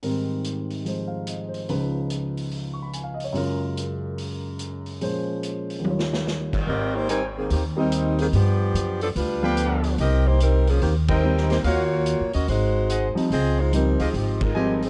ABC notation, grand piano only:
X:1
M:4/4
L:1/16
Q:"Swing" 1/4=145
K:Ab
V:1 name="Grand piano"
z8 z2 f2 e2 c2- | c z8 z d' _c' a f e d | z16 | z16 |
z16 | z16 | z16 | z16 |
z16 |]
V:2 name="Grand piano"
[A,,E,G,CB]8 [F,A,Ec]8 | [D,,D,F,E_c]16 | [_G,,D,A,FB]16 | [B,,F,A,Dc]8 [E,,E,G,Fd]8 |
z8 z2 [G,B,CE]6 | z8 z2 [F,=A,=B,=D]6 | z12 [G,B,CE]4 | z12 z2 [F,G,CE]2 |
z4 [F,G,CE]2 z6 [F,G,CE]2 z2 |]